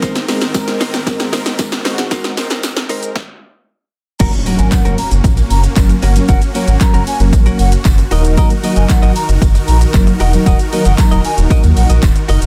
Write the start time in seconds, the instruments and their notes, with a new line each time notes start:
Already playing: supersaw synth G#2 D#3 C4 A#4, analog polysynth G#3 C4 A#4
0.02 clean electric guitar D#4 A#4 C5, kick, snare, closed hi-hat, tambourine, shaker
0.15 snare, closed hi-hat, shaker
0.28 analog polysynth G#3 C4 A#4, clean electric guitar D#4 A#4 C5, snare, open hi-hat, tambourine, shaker
0.41 clean electric guitar D#4 A#4 C5, snare, closed hi-hat, tambourine, shaker
0.54 analog polysynth G#3 C4 A#4, muted clean electric guitar stroke, kick, snare, closed hi-hat, tambourine, shaker
0.68 muted clean electric guitar stroke, snare, closed hi-hat, shaker
0.80 clean electric guitar D#4 A#4 C5, snare, open hi-hat, tambourine, shaker
0.94 muted clean electric guitar stroke, snare, closed hi-hat, shaker
1.06 analog polysynth G#3 C4 A#4, kick, snare, closed hi-hat, tambourine, shaker
1.20 muted clean electric guitar stroke, snare, closed hi-hat, tambourine, shaker
1.33 clean electric guitar D#4 A#4 C5, snare, open hi-hat, tambourine, shaker
1.46 muted clean electric guitar stroke, snare, closed hi-hat, tambourine, shaker
1.59 analog polysynth G#3 C4 A#4, kick, snare, closed hi-hat, tambourine, shaker
1.72 muted clean electric guitar stroke, snare, closed hi-hat, shaker
1.85 analog polysynth G#3 C4 F#4, clean electric guitar D#4 A#4 C5, snare, open hi-hat, tambourine, shaker
1.98 muted clean electric guitar stroke, snare, closed hi-hat, shaker
2.11 clean electric guitar D#4 A#4 C5, kick, snare, closed hi-hat, tambourine, shaker
2.24 snare, closed hi-hat, shaker
2.37 clean electric guitar D#4 A#4 C5, snare, open hi-hat, tambourine, shaker
2.50 clean electric guitar D#4 A#4 C5, snare, closed hi-hat, tambourine, shaker
2.63 muted clean electric guitar stroke, snare, closed hi-hat, tambourine, shaker
2.76 muted clean electric guitar stroke, snare, closed hi-hat, shaker
2.89 analog polysynth G#3 C4 A#4, clean electric guitar D#4 A#4 C5, open hi-hat, tambourine, shaker
3.02 muted clean electric guitar stroke, closed hi-hat, shaker
3.15 kick, snare
4.20 sub bass F#1, analog polysynth F#3 A#3 C#4 A#4, supersaw synth A#3 C#4 F#4, clean electric guitar C#4 F#4 A#4, flute A#5, kick, closed hi-hat, crash, tambourine, impact, shaker
4.33 muted clean electric guitar stroke, closed hi-hat, shaker
4.46 analog polysynth F#3 A#3 C#4 A#4, clean electric guitar C#4 F#4 A#4, open hi-hat, tambourine, shaker
4.59 sub bass G#1, clean electric guitar C#4 F#4 A#4, flute G#5, closed hi-hat, tambourine, shaker
4.72 flute F#5, muted clean electric guitar stroke, kick, clap, closed hi-hat, tambourine, shaker
4.85 sub bass F#1, clean electric guitar C#4 F#4 A#4, closed hi-hat, shaker
4.98 flute A#5, muted clean electric guitar stroke, open hi-hat, tambourine, shaker
5.11 sub bass F#1, muted clean electric guitar stroke, closed hi-hat, shaker
5.24 sub bass A#1, muted clean electric guitar stroke, kick, closed hi-hat, tambourine, shaker
5.37 muted clean electric guitar stroke, closed hi-hat, tambourine, shaker
5.50 sub bass F#1, flute A#5, open hi-hat, tambourine, shaker
5.63 muted clean electric guitar stroke, closed hi-hat, tambourine, shaker
5.76 sub bass F#1, analog polysynth F#3 A#3 C#4 A#4, kick, clap, closed hi-hat, tambourine, shaker
5.89 muted clean electric guitar stroke, closed hi-hat, shaker
6.02 sub bass G1, clean electric guitar C#4 F#4 A#4, flute F#5, open hi-hat, tambourine, shaker
6.15 analog polysynth F#3 A#3 C#4 A#4, muted clean electric guitar stroke, closed hi-hat, tambourine, shaker
6.28 sub bass F#1, clean electric guitar C#4 F#4 A#4, flute F#5, kick, closed hi-hat, tambourine, shaker
6.42 muted clean electric guitar stroke, closed hi-hat, shaker
6.54 analog polysynth F#3 A#3 C#4 C#5, clean electric guitar C#4 F#4 A#4, open hi-hat, tambourine, shaker
6.67 sub bass G#1, clean electric guitar C#4 F#4 A#4, flute F#5, closed hi-hat, tambourine, shaker
6.81 analog polysynth F#3 A#3 C#4 A#4, flute A#5, muted clean electric guitar stroke, kick, clap, closed hi-hat, tambourine, shaker
6.94 sub bass F#1, clean electric guitar C#4 F#4 A#4, closed hi-hat, shaker
7.07 flute G#5, muted clean electric guitar stroke, open hi-hat, tambourine, shaker
7.20 sub bass F#1, analog polysynth F#3 A#3 C#4 A#4, muted clean electric guitar stroke, closed hi-hat, shaker
7.33 sub bass A#1, muted clean electric guitar stroke, kick, closed hi-hat, tambourine, shaker
7.46 clean electric guitar C#4 F#4 A#4, closed hi-hat, shaker
7.59 sub bass F#1, flute F#5, open hi-hat, tambourine, shaker
7.72 muted clean electric guitar stroke, closed hi-hat, shaker
7.85 sub bass F#1, muted clean electric guitar stroke, kick, clap, closed hi-hat, tambourine, shaker
7.98 muted clean electric guitar stroke, closed hi-hat, shaker
8.11 sub bass D#1, supersaw synth D#3 D#4 A#4, analog polysynth F#3 A#3 D#4 A#4, clean electric guitar F#4 A#4 D#5, open hi-hat, tambourine, shaker
8.24 muted clean electric guitar stroke, closed hi-hat, tambourine, shaker
8.37 clean electric guitar F#4 A#4 D#5, flute A#5, kick, closed hi-hat, tambourine, shaker
8.50 muted clean electric guitar stroke, closed hi-hat, shaker
8.63 analog polysynth F#3 A#3 D#4 A#4, clean electric guitar F#4 A#4 D#5, open hi-hat, tambourine, shaker
8.76 sub bass F#1, clean electric guitar F#4 A#4 D#5, flute G#5, closed hi-hat, shaker
8.89 flute F#5, kick, clap, closed hi-hat, tambourine, shaker
9.02 sub bass G#1, clean electric guitar F#4 A#4 D#5, closed hi-hat, shaker
9.16 flute A#5, muted clean electric guitar stroke, open hi-hat, tambourine, shaker
9.29 sub bass F#1, muted clean electric guitar stroke, closed hi-hat, shaker
9.42 sub bass F#1, muted clean electric guitar stroke, kick, closed hi-hat, tambourine, shaker
9.55 muted clean electric guitar stroke, closed hi-hat, tambourine, shaker
9.68 sub bass A#1, flute A#5, open hi-hat, tambourine, shaker
9.81 muted clean electric guitar stroke, closed hi-hat, shaker
9.94 sub bass F#1, analog polysynth F#3 A#3 D#4 A#4, kick, clap, closed hi-hat, tambourine, shaker
10.07 muted clean electric guitar stroke, closed hi-hat, shaker
10.20 sub bass E1, clean electric guitar F#4 A#4 D#5, flute F#5, open hi-hat, tambourine, shaker
10.33 analog polysynth F#3 A#3 D#4 A#4, muted clean electric guitar stroke, closed hi-hat, tambourine, shaker
10.46 sub bass D#1, clean electric guitar F#4 A#4 D#5, flute F#5, kick, closed hi-hat, tambourine, shaker
10.59 muted clean electric guitar stroke, closed hi-hat, shaker
10.72 analog polysynth F#3 A#3 D#4 A#4, clean electric guitar F#4 A#4 D#5, open hi-hat, tambourine, shaker
10.85 sub bass F#1, clean electric guitar F#4 A#4 D#5, flute F#5, closed hi-hat, tambourine, shaker
10.98 analog polysynth F#3 A#3 D#4 A#4, flute A#5, muted clean electric guitar stroke, kick, clap, closed hi-hat, tambourine, shaker
11.11 sub bass D#1, clean electric guitar F#4 A#4 D#5, closed hi-hat, shaker
11.24 flute G#5, muted clean electric guitar stroke, open hi-hat, tambourine, shaker
11.38 sub bass D#1, analog polysynth F#3 A#3 D#4 A#4, muted clean electric guitar stroke, closed hi-hat, shaker
11.50 clean electric guitar F#4 A#4 D#5, kick, closed hi-hat, tambourine, shaker
11.63 sub bass D#2, muted clean electric guitar stroke, closed hi-hat, tambourine, shaker
11.76 sub bass A#1, flute F#5, muted clean electric guitar stroke, open hi-hat, tambourine, shaker
11.89 sub bass A#1, clean electric guitar F#4 A#4 D#5, closed hi-hat, tambourine, shaker
12.02 sub bass D#1, kick, clap, closed hi-hat, tambourine, shaker
12.16 muted clean electric guitar stroke, closed hi-hat, shaker
12.28 sub bass F#1, clean electric guitar F#4 A#4 D#5, open hi-hat, tambourine, shaker
12.42 sub bass D#1, muted clean electric guitar stroke, closed hi-hat, shaker